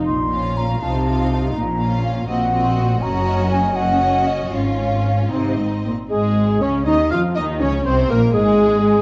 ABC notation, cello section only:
X:1
M:6/8
L:1/8
Q:3/8=81
K:Bbm
V:1 name="Cello section" clef=bass
B,,3 C,3 | B,,3 B,,3 | [K:Db] G,,6 | A,,3 C, A,, B,, |
A,,2 D, E, F, E, | D, C, B,, A,,3 |]